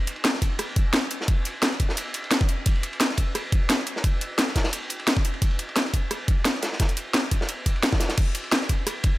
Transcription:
0.07 closed hi-hat medium
0.07 ride medium
0.16 ride soft
0.24 snare loud
0.24 closed hi-hat medium
0.24 ride medium
0.34 snare medium
0.42 kick medium
0.42 closed hi-hat medium
0.42 ride medium
0.59 cross-stick medium
0.59 closed hi-hat medium
0.59 ride loud
0.76 kick loud
0.76 closed hi-hat medium
0.76 ride medium
0.93 snare loud
0.93 closed hi-hat medium
0.93 ride medium
1.02 snare soft
1.11 closed hi-hat medium
1.11 ride medium
1.21 snare soft
1.28 kick loud
1.28 closed hi-hat medium
1.28 ride medium
1.45 closed hi-hat medium
1.45 ride medium
1.63 snare loud
1.63 closed hi-hat medium
1.63 ride medium
1.72 snare soft
1.80 kick medium
1.80 closed hi-hat medium
1.80 ride medium
1.89 snare medium
1.97 closed hi-hat medium
1.97 ride loud
2.14 closed hi-hat medium
2.14 ride medium
2.24 ride soft
2.31 snare loud
2.31 closed hi-hat medium
2.31 ride medium
2.40 kick loud
2.40 snare soft
2.49 closed hi-hat medium
2.49 ride medium
2.66 kick loud
2.66 closed hi-hat medium
2.66 ride medium
2.76 ride soft
2.83 closed hi-hat medium
2.83 ride medium
2.93 ride soft
3.00 snare loud
3.00 closed hi-hat medium
3.00 ride medium
3.10 snare soft
3.17 kick medium
3.17 closed hi-hat medium
3.17 ride medium
3.35 cross-stick medium
3.35 closed hi-hat medium
3.35 ride medium
3.52 kick loud
3.52 closed hi-hat medium
3.52 ride medium
3.69 snare loud
3.69 closed hi-hat medium
3.69 ride medium
3.79 snare soft
3.86 closed hi-hat medium
3.86 ride medium
3.96 snare medium
4.04 kick loud
4.04 closed hi-hat medium
4.04 ride medium
4.21 closed hi-hat medium
4.21 ride medium
4.38 snare loud
4.38 closed hi-hat medium
4.38 ride medium
4.48 snare soft
4.56 kick medium
4.56 snare medium
4.56 closed hi-hat medium
4.56 ride medium
4.64 snare medium
4.64 ride medium
4.73 closed hi-hat medium
4.73 ride loud
4.90 closed hi-hat medium
4.90 ride medium
4.99 ride soft
5.07 snare loud
5.07 closed hi-hat medium
5.07 ride medium
5.17 kick loud
5.17 snare soft
5.25 closed hi-hat medium
5.25 ride medium
5.34 ride soft
5.42 kick loud
5.42 closed hi-hat loud
5.42 ride loud
5.51 ride soft
5.59 closed hi-hat medium
5.59 ride medium
5.69 ride soft
5.76 snare loud
5.76 closed hi-hat medium
5.76 ride medium
5.85 snare soft
5.94 kick medium
5.94 closed hi-hat medium
5.94 ride medium
6.11 cross-stick medium
6.11 closed hi-hat loud
6.11 ride medium
6.28 kick loud
6.28 closed hi-hat medium
6.28 ride medium
6.45 snare loud
6.45 closed hi-hat loud
6.45 ride medium
6.55 snare soft
6.62 snare loud
6.62 closed hi-hat medium
6.62 ride medium
6.72 snare soft
6.79 kick loud
6.79 snare loud
6.79 closed hi-hat loud
6.79 ride medium
6.89 closed hi-hat soft
6.97 closed hi-hat medium
6.97 ride medium
7.14 snare loud
7.14 closed hi-hat medium
7.14 ride medium
7.23 snare soft
7.31 kick medium
7.31 closed hi-hat medium
7.31 ride medium
7.41 snare medium
7.49 closed hi-hat loud
7.49 ride medium
7.66 kick medium
7.66 closed hi-hat medium
7.66 ride medium
7.76 ride soft
7.83 snare loud
7.83 closed hi-hat loud
7.83 ride medium
7.92 kick loud
7.92 snare loud
7.92 ride medium
8.00 snare loud
8.00 closed hi-hat medium
8.00 ride medium
8.09 snare loud
8.09 closed hi-hat soft
8.09 ride medium
8.17 kick loud
8.17 closed hi-hat loud
8.17 crash medium
8.17 ride medium
8.28 ride soft
8.35 closed hi-hat medium
8.35 ride medium
8.44 ride soft
8.52 snare loud
8.52 closed hi-hat loud
8.52 ride medium
8.62 snare soft
8.69 kick medium
8.69 closed hi-hat medium
8.69 ride medium
8.87 cross-stick medium
8.87 closed hi-hat loud
8.87 ride medium
9.03 kick loud
9.03 closed hi-hat medium
9.03 ride medium

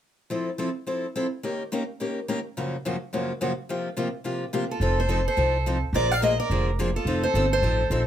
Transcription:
0.30 0.49 F3 medium
0.30 0.49 C4 medium
0.30 0.49 E4 medium
0.30 0.49 A4 medium
0.58 0.68 F3 medium
0.58 0.69 C4 medium
0.58 0.69 E4 medium
0.58 0.69 A4 medium
0.87 1.05 F3 soft
0.87 1.05 C4 soft
0.87 1.05 E4 medium
0.87 1.06 A4 soft
1.15 1.25 F3 medium
1.15 1.25 C4 medium
1.15 1.26 E4 medium
1.15 1.26 A4 medium
1.43 1.62 D#3 soft
1.43 1.62 A#3 medium
1.43 1.62 C#4 medium
1.43 1.62 G4 medium
1.43 1.62 A#4 medium
1.72 1.82 D#3 medium
1.72 1.82 A#3 medium
1.72 1.82 C#4 medium
1.72 1.82 G4 medium
1.72 1.82 A#4 medium
2.00 2.18 D#3 soft
2.00 2.19 A#3 medium
2.00 2.19 C#4 medium
2.00 2.19 G4 soft
2.00 2.19 A#4 medium
2.28 2.38 D#3 medium
2.28 2.38 A#3 medium
2.28 2.39 C#4 medium
2.28 2.39 G4 medium
2.28 2.39 A#4 medium
2.57 2.75 F#2 soft
2.57 2.75 C#3 medium
2.57 2.75 F3 medium
2.57 2.75 A#3 medium
2.57 2.76 C#4 medium
2.57 2.76 F#4 medium
2.85 2.95 F#2 medium
2.85 2.95 C#3 medium
2.85 2.95 F3 medium
2.85 2.95 A#3 medium
2.85 2.96 C#4 medium
2.85 2.96 F#4 medium
3.13 3.31 F#2 medium
3.13 3.31 C#3 medium
3.13 3.32 F3 medium
3.13 3.32 A#3 medium
3.13 3.32 C#4 medium
3.13 3.32 F#4 medium
3.41 3.51 F#2 medium
3.41 3.51 C#3 medium
3.41 3.51 F3 medium
3.41 3.51 A#3 medium
3.41 3.51 C#4 medium
3.41 3.52 F#4 medium
3.69 3.88 C3 medium
3.69 3.88 F3 medium
3.69 3.88 A#3 medium
3.69 3.88 F4 medium
3.69 3.88 G4 medium
3.97 4.07 C3 medium
3.97 4.07 F3 medium
3.97 4.08 A#3 medium
3.97 4.08 F4 medium
3.97 4.08 G4 medium
4.24 4.43 C3 soft
4.24 4.44 F3 medium
4.24 4.44 A#3 medium
4.24 4.44 F4 medium
4.24 4.44 G4 medium
4.53 4.63 C3 medium
4.53 4.64 F3 medium
4.53 4.64 A#3 medium
4.53 4.64 F4 medium
4.53 4.64 G4 medium
4.69 4.95 F4 medium
4.69 4.97 A4 medium
4.80 5.25 F1 medium
4.80 5.00 F3 medium
4.80 5.00 C4 medium
4.80 5.00 D#4 medium
4.80 5.01 A4 medium
4.98 5.24 A4 medium
4.98 5.25 C5 medium
5.09 5.19 F3 medium
5.09 5.20 C4 medium
5.09 5.20 D#4 medium
5.09 5.20 A4 medium
5.25 5.78 A4 medium
5.25 5.79 C5 medium
5.37 5.82 C2 medium
5.37 5.56 F3 soft
5.37 5.56 C4 medium
5.37 5.56 D#4 medium
5.37 5.57 A4 medium
5.66 5.76 F3 medium
5.66 5.77 C4 medium
5.66 5.77 D#4 medium
5.66 5.77 A4 medium
5.93 6.38 A#1 medium
5.93 6.13 D3 medium
5.93 6.13 F3 medium
5.93 6.13 A#3 medium
5.93 6.13 D4 medium
5.93 6.13 G#4 medium
5.93 6.12 A#4 medium
5.93 6.11 D5 medium
6.10 6.20 D5 medium
6.10 6.23 F5 medium
6.21 6.32 D3 medium
6.21 6.33 F3 medium
6.21 6.33 A#3 medium
6.21 6.33 D4 medium
6.21 6.33 G#4 medium
6.21 6.36 A#4 medium
6.21 6.38 D#5 medium
6.37 6.64 A#4 medium
6.37 6.65 D5 medium
6.50 6.95 F1 medium
6.50 6.69 D3 medium
6.50 6.69 F3 medium
6.50 6.70 A#3 medium
6.50 6.70 D4 medium
6.50 6.70 G#4 medium
6.79 6.89 D3 medium
6.79 6.89 F3 medium
6.79 6.89 A#3 medium
6.79 6.90 D4 medium
6.79 6.89 G#4 medium
6.93 7.20 F4 medium
6.93 7.23 A4 medium
7.05 7.28 F1 medium
7.05 7.25 F3 medium
7.05 7.25 C4 medium
7.05 7.26 D#4 medium
7.05 7.26 A4 medium
7.21 7.48 A4 medium
7.21 7.49 C5 medium
7.34 7.58 G1 medium
7.34 7.45 F3 medium
7.34 7.45 C4 medium
7.34 7.45 D#4 medium
7.34 7.46 A4 medium
7.50 8.02 A4 medium
7.50 8.04 C5 medium
7.62 7.86 A1 medium
7.62 7.81 F3 medium
7.62 7.82 C4 medium
7.62 7.82 D#4 medium
7.62 7.82 A4 medium
7.90 8.07 A#1 medium
7.90 8.01 F3 medium
7.90 8.01 C4 medium
7.90 8.02 D#4 medium
7.90 8.02 A4 medium

